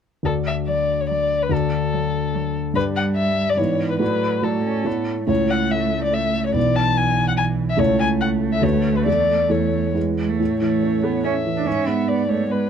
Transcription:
0.23 D2 D4 F#4 A4 D5
0.47 E5
0.68 F#3 D5
1.00 C#5
1.09 F#3 D5
1.42 B4
1.49 D2 D4 F#4 A4 D5
1.93 F#3
2.35 F#3
2.74 G2 G3 D4 G4 B4 D5
2.96 F#5
3.16 E5
3.49 D5
3.57 G#2 E3 B3 E4 C#5 D5
3.90 B4
3.99 A2 F#3 A3 F#4 B4 D5
4.42 A2 F#3 A3 F#4 A4 D5
4.65 C#4
4.84 A2 A3 B3 E4 C#5
5.20 A3
5.27 C#2 A3 E4 C#5
5.50 F#5
5.71 E5
6.04 D5
6.14 E5
6.46 C#5
6.53 B1 B3 E4 D5
6.57 E3
6.76 A5
6.97 G#5
7.28 F#5
7.37 G#5
7.70 E5
7.77 C#2 A3 E4 C#5
8.00 G#5
8.21 F#5
8.53 E5
8.62 D2 A3 F#4 B4 C#5
8.97 B4
9.06 E2 A3 E4 A4 D5
9.49 E2 A3 E4 A4 C#5
9.94 E2 G#3 B3 E4 G#4
10.17 G#3
10.29 A3
10.40 A2 C#5
10.61 E3 A3
10.83 C#4
11.04 B3 A4
11.24 C#4 E5
11.45 E3
11.57 D4
11.66 G#2 C#4
11.87 G#3 B3
12.08 B3 D5
12.29 A3 C#5 D5
12.50 G#3 B3 B4

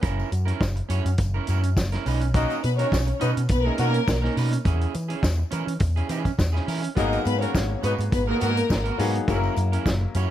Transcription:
0.01 F#1 C#4 E4 A#4, kick, closed hi-hat, tambourine
0.20 tambourine
0.30 F#2, muted clean electric guitar stroke, closed hi-hat, tambourine
0.45 C#4 E4 A#4, closed hi-hat
0.61 F#1, kick, snare, tambourine
0.76 muted clean electric guitar stroke, closed hi-hat
0.89 F#2 C#4 E4 C#5, closed hi-hat, tambourine
1.05 F#2, muted clean electric guitar stroke, closed hi-hat, tambourine
1.18 F#1, muted clean electric guitar stroke, kick, closed hi-hat, tambourine
1.34 C#4 E4 A#4
1.47 F#2 C#4 E4 A#4, closed hi-hat, tambourine
1.62 muted clean electric guitar stroke, closed hi-hat, tambourine
1.77 F#1, muted clean electric guitar stroke, kick, snare, tambourine
1.92 C#4 E4 A#4, snare, closed hi-hat
2.06 B1 C#4 D#4 B4, open hi-hat, tambourine
2.21 muted clean electric guitar stroke, closed hi-hat, tambourine
2.34 A#3 C#4 D#4 F#4 A#4 D#5, kick, closed hi-hat, tambourine
2.50 closed hi-hat, tambourine
2.63 B2 B3 B4, muted clean electric guitar stroke, closed hi-hat, tambourine
2.78 A#3 C#4 D#4 F#4 A#4 C#5, closed hi-hat
2.92 B1, kick, snare, tambourine
3.07 muted clean electric guitar stroke, closed hi-hat
3.20 B2 F#3 B3 C#4 D#4 B4, closed hi-hat, tambourine
3.35 B2, muted clean electric guitar stroke, closed hi-hat, tambourine
3.49 B1 B3 B4, muted clean electric guitar stroke, kick, closed hi-hat, tambourine
3.64 G#3 A#3 C#4 D#4 E4 G#4 A#4
3.78 B2 D#3 F#3 A#3 C#4 D#4 F#4 A#4, closed hi-hat, tambourine
3.94 muted clean electric guitar stroke, closed hi-hat
4.07 B1, muted clean electric guitar stroke, kick, snare, tambourine
4.22 C#4 D#4 A#4, snare
4.36 B2 C#4 D#4 B4, open hi-hat, tambourine
4.51 muted clean electric guitar stroke, closed hi-hat, tambourine
4.65 E2 C#4 E4 G#4, kick, closed hi-hat, tambourine
4.81 closed hi-hat
4.94 E3, muted clean electric guitar stroke, closed hi-hat, tambourine
5.09 C#4 E4 G#4, closed hi-hat
5.23 E2, kick, snare, tambourine
5.38 muted clean electric guitar stroke
5.51 E3 C#4 E4 A#4, closed hi-hat, tambourine
5.66 E3, muted clean electric guitar stroke, closed hi-hat, tambourine
5.79 E2, muted clean electric guitar stroke, kick, closed hi-hat, tambourine
5.96 C#4 E4 G#4, closed hi-hat
6.09 E3 C#4 E4 G#4, closed hi-hat, tambourine
6.25 muted clean electric guitar stroke, kick, closed hi-hat, tambourine
6.38 E2, muted clean electric guitar stroke, kick, snare, tambourine
6.53 C#4 E4 G#4, snare
6.67 E3 C#4 E4 A#4, open hi-hat, tambourine
6.83 muted clean electric guitar stroke, closed hi-hat
6.95 G#1 F#3 A#3 B3 D#4 F#4 G#4 A#4 D#5, kick, closed hi-hat, tambourine
7.13 closed hi-hat, tambourine
7.25 G#2 B3 B4, muted clean electric guitar stroke, closed hi-hat, tambourine
7.41 B3 C#4 F#4 A#4 C#5, closed hi-hat
7.55 G#1, kick, snare, tambourine
7.70 muted clean electric guitar stroke
7.83 G#2 F#3 B3 D#4 F#4 B4, closed hi-hat, tambourine
7.98 G#2, muted clean electric guitar stroke, closed hi-hat, tambourine
8.12 G#1 B3 B4, muted clean electric guitar stroke, kick, closed hi-hat, tambourine
8.27 D#3 G#3 A#3 B3 F#4 G#4 A#4
8.40 G#2 D#3 F#3 A#3 B3 F#4 A#4, closed hi-hat, tambourine
8.56 muted clean electric guitar stroke, closed hi-hat, tambourine
8.69 G#1, muted clean electric guitar stroke, kick, snare, tambourine
8.84 B3 F#4 A#4, closed hi-hat
8.98 G#2 F#3 A#3 B3 D#4 F#4 G#4 B4, open hi-hat, tambourine
9.14 muted clean electric guitar stroke, closed hi-hat
9.28 F#1 F#3 A#3 C#4 E4 G#4 A#4, kick, closed hi-hat, tambourine
9.36 A#4
9.44 tambourine
9.56 F#2, muted clean electric guitar stroke, closed hi-hat, tambourine
9.72 C#4 E4 A#4, closed hi-hat
9.86 F#1, kick, snare, tambourine
10.01 muted clean electric guitar stroke
10.14 F#2 C#4 E4 C#5, closed hi-hat, tambourine

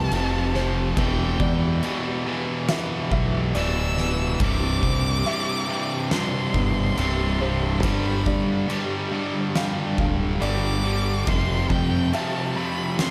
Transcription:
Already playing: F2 C3 F3 C4 E4 G4 A4 B4 A5
0.11 F1 F2 C3 F3, crash
0.54 F2 C3 F3 C5, snare
0.97 E1 E2 B2 E3 G4 D5 G5, kick, crash
1.40 E2 D5, kick
1.83 E2 B2 E3, crash
2.26 E2 B2 E3
2.68 E2 B2 E3 E5, snare, crash
3.12 B1 E5, kick
3.54 D1 E2 B2 E3 D5 E6, crash
3.97 E2 B2 E3, snare
4.40 C1 C2 G2 C3 G3 D6, kick, crash
4.83 C2, kick
5.26 C2 G2 C3 E5, crash
5.69 C2 G2 C3
6.11 C2 G2 C3 C6, snare, crash
6.54 G1 B3, kick
6.97 C1 C2 G2 C3, crash
7.40 C2 G2 C3 C5
7.82 G1 G2 D3 G3 D4 F4 A4 B5, kick, crash
8.26 G2 D5, kick
8.70 G2 D3 G3, crash
9.12 G2 D3 G3
9.55 G2 D3 G3 F5, snare, crash
9.98 D1 F5, kick
10.40 G1 G2 D3 G3 D5 D6, crash
10.84 G2 D3 G3
11.27 F1 F2 C3 F3 A3 E4 G4 C6, kick, crash
11.70 F2 G5, kick
12.12 F2 C3 F3 E5 A5, crash
12.56 F2 C3 F3 B5
12.99 F2 C3 F3 C6, snare, crash

